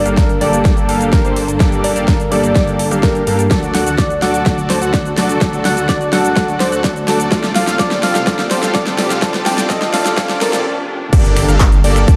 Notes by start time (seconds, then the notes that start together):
Already playing: G3 A#3 D4 A4 D5, riser
0.05 G1 A#3 D4 G4 A4 F5, closed hi-hat, shaker
0.17 A#4, kick, snare, closed hi-hat, shaker
0.29 closed hi-hat, shaker
0.40 G1 G3 A#3 D4 G4 A4 D5, open hi-hat
0.53 closed hi-hat, shaker
0.65 G1 A#3 D4 G4 D5, kick, snare, closed hi-hat, shaker
0.77 closed hi-hat, shaker
0.89 G1 A#3 D4 G4 A4 F5, open hi-hat
1.01 closed hi-hat, shaker
1.13 A#4, kick, snare, closed hi-hat, shaker
1.25 G1 A#3 D4 G4 A4 C5, closed hi-hat, shaker
1.36 open hi-hat
1.48 closed hi-hat, shaker
1.59 G1 G3 A#3 D4 G4 A4 D5, kick, snare, closed hi-hat, shaker
1.72 closed hi-hat, shaker
1.84 D5, open hi-hat
1.96 G1 A#3 D4 G4 A4 F5, closed hi-hat, shaker
2.08 A#4, kick, snare, closed hi-hat, shaker
2.20 closed hi-hat, shaker
2.30 G1 G3 A#3 D4 G4 A4 D5, open hi-hat
2.44 closed hi-hat, shaker
2.55 G1 A#3 D4 G4 D5, kick, snare, closed hi-hat, shaker
2.67 closed hi-hat, shaker
2.79 A4, open hi-hat
2.91 G1 G3 A#3 D4 G4 A4 F5, closed hi-hat, shaker
3.03 A#4, kick, snare, closed hi-hat, shaker
3.15 closed hi-hat, shaker
3.26 G2 G3 A#3 D4 G4 A4 A#4 F5, open hi-hat
3.39 closed hi-hat, shaker
3.50 D2 D3 F#3 A3 D4 F#4 A4 D5, kick, snare, closed hi-hat, shaker
3.63 closed hi-hat, shaker
3.74 F#5, snare, open hi-hat
3.86 D2 F#4 A4 F#5, closed hi-hat, shaker
3.98 D5, kick, snare, closed hi-hat, shaker
4.10 closed hi-hat, shaker
4.21 D2 F#3 A3 D4 F#4 A4 D5 F#5, snare, open hi-hat
4.34 closed hi-hat, shaker
4.45 D2 F#3 A3 D4 F#4 A4 D5, kick, snare, closed hi-hat, shaker
4.58 closed hi-hat, shaker
4.70 C5, snare, open hi-hat
4.82 D2 F#4 A4 F#5, closed hi-hat, shaker
4.94 D5, kick, snare, closed hi-hat, shaker
5.05 closed hi-hat, shaker
5.16 D2 F#3 A3 D4 F#4 A4 D5, snare, open hi-hat
5.29 closed hi-hat, shaker
5.40 D2 F#3 A3 D4 F#4 A4 D5, kick, snare, closed hi-hat, shaker
5.53 closed hi-hat, shaker
5.65 F#5, snare, open hi-hat
5.77 D2 F#4 A4 F#5, closed hi-hat, shaker
5.89 D5, kick, snare, closed hi-hat, shaker
6.01 closed hi-hat, shaker
6.11 D2 F#3 A3 D4 F#4 A4 D5 F#5, snare, open hi-hat
6.25 closed hi-hat, shaker
6.35 D2 F#3 A3 D4 F#4 A4 D5, kick, snare, closed hi-hat, shaker
6.48 closed hi-hat, shaker
6.60 C5, snare, open hi-hat
6.72 D2 F#4 A4 F#5, closed hi-hat, shaker
6.84 D5, kick, snare, closed hi-hat, shaker
6.96 closed hi-hat, shaker
7.07 D2 F#3 A3 D4 F#4 A4 D5, snare, open hi-hat
7.20 closed hi-hat, shaker
7.30 C2 C3 F3 A3 C4 D4 F4 G4 A4 D5, kick, snare, closed hi-hat, shaker
7.44 snare, closed hi-hat, shaker
7.55 F5, snare, open hi-hat
7.67 C2 F4 A4 F5, snare, closed hi-hat, shaker
7.78 C2 F3 A3 D4 F4 A4 D5, kick, snare, closed hi-hat, shaker
7.91 snare, closed hi-hat, shaker
8.03 F5, snare, open hi-hat
8.15 C2 F4 A4 F5, snare, closed hi-hat, shaker
8.26 C2 F3 A3 D4 F4 A4 D5, kick, snare, closed hi-hat, shaker
8.39 snare, closed hi-hat, shaker
8.51 C5, snare, open hi-hat
8.63 C2 F4 A4 F5, snare, closed hi-hat, shaker
8.73 C2 F3 A3 D4 F4 A4 D5, kick, snare, closed hi-hat, shaker
8.87 snare, closed hi-hat, shaker
8.98 snare, open hi-hat
9.10 C2 F4 A4 F5, snare, closed hi-hat, shaker
9.21 C2 F3 A3 D4 F4 A4 D5, kick, snare, closed hi-hat, shaker
9.34 snare, closed hi-hat, shaker
9.45 C2 F3 A3 D4 F4 A4 D5 G5, snare, open hi-hat
9.58 snare, closed hi-hat, shaker
9.69 C2 F3 A3 D4 F4 A4 D5 D#5, kick, snare, closed hi-hat, shaker
9.82 snare, closed hi-hat, shaker
9.92 C2 F3 A3 D4 F4 A4 D5 F5, snare, open hi-hat
10.06 snare, closed hi-hat, shaker
10.16 C2 F3 A3 D4 F4 A4 D5, kick, snare, closed hi-hat, shaker
10.29 snare, closed hi-hat, shaker
10.40 C2 F3 A3 D4 F4 A4 A#4 D5, snare, open hi-hat
10.53 snare, closed hi-hat, shaker
11.13 G1 A#3 D4 G4 A4 D5, kick, closed hi-hat, crash, impact, shaker
11.25 closed hi-hat, shaker
11.37 finger snap, open hi-hat
11.48 G1 A#3 D4 G4 A4 F5, closed hi-hat, shaker
11.60 kick, clap, closed hi-hat, shaker
11.72 closed hi-hat, shaker
11.84 G1 A#3 D4 G4 A4 D5, open hi-hat
11.96 finger snap, closed hi-hat, shaker
12.08 G1 A#3 D4 G4 A4 D5, kick, closed hi-hat, shaker